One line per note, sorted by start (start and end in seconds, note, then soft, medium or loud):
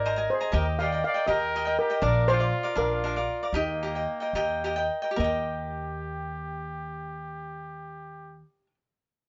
0.00 0.26 G#1 medium
0.00 0.28 A#4 medium
0.00 0.31 D5 medium
0.06 0.17 C5 medium
0.06 0.16 D#5 medium
0.06 0.16 G#5 medium
0.06 0.15 A#5 medium
0.16 0.40 D#5 soft
0.16 0.40 G#5 medium
0.16 0.39 A#5 medium
0.30 0.53 G#4 medium
0.30 0.54 C5 medium
0.41 0.52 D#5 soft
0.41 0.53 G#5 soft
0.41 0.52 A#5 medium
0.52 1.01 D#2 medium
0.52 0.79 G4 medium
0.52 0.79 A#4 medium
0.52 0.79 D#5 medium
0.52 0.65 D#5 medium
0.52 0.80 G5 medium
0.56 0.67 A#4 medium
0.79 0.92 G4 soft
0.79 0.92 A#4 soft
0.79 1.02 D5 medium
0.79 0.92 D#5 medium
0.79 1.03 F5 medium
0.79 0.91 G5 medium
0.92 1.15 A#4 soft
0.92 1.14 D#5 soft
0.92 1.13 G5 soft
1.04 1.27 D5 medium
1.04 1.28 F5 medium
1.14 1.26 A#4 soft
1.14 1.26 D#5 soft
1.14 1.27 G5 medium
1.27 1.76 D#2 medium
1.27 1.54 G4 medium
1.27 1.54 A#4 medium
1.27 1.75 A#4 medium
1.27 1.79 D#5 medium
1.27 1.54 D#5 medium
1.27 1.55 G5 medium
1.56 1.67 G4 medium
1.56 1.66 A#4 medium
1.56 1.66 D#5 medium
1.56 1.64 G5 medium
1.65 1.90 A#4 soft
1.65 1.89 D#5 medium
1.65 1.88 G5 medium
1.79 2.01 G4 medium
1.79 2.03 A#4 medium
1.90 2.01 A#4 soft
1.90 2.02 D#5 soft
1.90 2.02 G5 soft
2.02 2.51 A#1 medium
2.02 2.27 D4 medium
2.02 2.27 A#4 medium
2.02 2.29 A#4 medium
2.02 2.29 D5 medium
2.02 2.30 D5 medium
2.02 2.28 F5 medium
2.28 2.40 D4 medium
2.28 2.40 A#4 soft
2.28 2.78 C5 medium
2.28 2.39 D5 medium
2.28 2.39 F5 medium
2.32 2.75 F4 medium
2.40 2.63 A#4 soft
2.40 2.62 D5 soft
2.40 2.63 F5 soft
2.63 2.74 A#4 soft
2.63 2.75 D5 medium
2.63 2.75 F5 soft
2.75 3.27 A#1 medium
2.75 3.03 D4 medium
2.75 3.50 F4 medium
2.75 3.02 A#4 medium
2.75 3.57 A#4 medium
2.75 3.04 D5 medium
2.75 3.04 F5 medium
3.04 3.16 D4 medium
3.04 3.16 A#4 medium
3.04 3.15 D5 medium
3.04 3.15 F5 medium
3.16 3.42 A#4 soft
3.16 3.41 D5 medium
3.16 3.41 F5 medium
3.43 3.53 A#4 soft
3.43 3.54 D5 soft
3.43 3.55 F5 medium
3.53 4.05 D#2 medium
3.53 4.87 A#3 medium
3.53 4.88 D#4 medium
3.53 3.82 G4 medium
3.53 3.82 A#4 medium
3.53 3.83 D#5 medium
3.53 3.83 G5 medium
3.83 3.95 G4 medium
3.83 3.95 A#4 soft
3.83 3.95 D#5 soft
3.83 3.94 G5 medium
3.95 4.21 A#4 soft
3.95 4.21 D#5 soft
3.95 4.19 G5 soft
4.20 4.34 A#4 soft
4.20 4.34 D#5 soft
4.20 4.33 G5 soft
4.33 4.88 D#2 medium
4.33 4.63 G4 medium
4.33 4.63 A#4 medium
4.33 4.64 D#5 medium
4.33 4.64 G5 medium
4.64 4.77 G4 medium
4.64 4.77 A#4 medium
4.64 4.76 D#5 medium
4.64 4.75 G5 medium
4.76 5.03 A#4 soft
4.76 5.01 D#5 soft
4.76 5.01 G5 medium
5.02 5.11 A#4 soft
5.02 5.17 D#5 soft
5.02 5.17 G5 soft
5.11 8.61 G4 medium
5.16 8.42 D#2 medium
5.16 8.40 A#3 medium
5.16 8.40 G4 medium
5.16 8.66 A#4 medium
5.16 8.70 D#5 medium
5.24 8.74 G5 medium